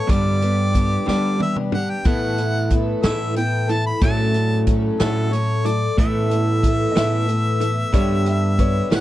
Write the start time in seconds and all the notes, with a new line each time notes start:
Already playing: C#5
0.09 G2 D3 G3 B3 D4 G4 D5, kick, closed hi-hat
0.41 G3 B3 D4 G4, closed hi-hat
0.72 G3 B3 D4 G4, kick, closed hi-hat
1.06 G2 D3 G3 B3 D4 G4 D5, snare
1.39 G2 D3 G3 B3 D4 G4 E5, high tom
1.56 mid tom
1.72 G2 D3 G3 B3 D4 G4 F#5, mid tom
1.90 G5
2.04 A2 E3 A3 B3 E4 A4 F#5, kick, closed hi-hat
2.37 B3 E4 A4, closed hi-hat
2.70 E3 B3 E4 A4, kick, closed hi-hat
3.03 A2 E3 A3 B3 E4 A4 E5, snare, closed hi-hat
3.35 A2 E3 B3 E4 A4 G5, closed hi-hat
3.68 A2 E3 B3 E4 A4 A5, closed hi-hat
3.86 B5
4.00 A2 F#3 A3 C#4 A4 A5, kick, closed hi-hat
4.34 A3 C#4 A4, closed hi-hat
4.67 F#3 A3 C#4 A4, kick, closed hi-hat
4.99 A2 F#3 A3 C#4 A4, snare, closed hi-hat
5.31 A2 F#3 A3 C#4 A4 C#5, closed hi-hat
5.65 A2 F#3 A3 A4 D5, closed hi-hat
5.97 A2 E3 A3 B3 A4 E5, kick, closed hi-hat
6.30 A3 B3 A4, closed hi-hat
6.63 E3 A3 B3 A4, kick, closed hi-hat
6.92 A2 A4 D#5
6.96 A2 E3 A3 B3 E5, snare, closed hi-hat
7.27 A2 E3 A3 B3 A4, closed hi-hat
7.60 A2 E3 A3 B3 A4, closed hi-hat
7.92 G2 D3 G3 B3 D4 G4 C#5, kick, closed hi-hat
8.25 G3 B3 D4 G4 E5, closed hi-hat
8.58 G3 B3 D4 G4 C#5, kick, closed hi-hat
8.90 A2 E3 G3 C#4 G4 B4, snare, closed hi-hat
8.94 F#5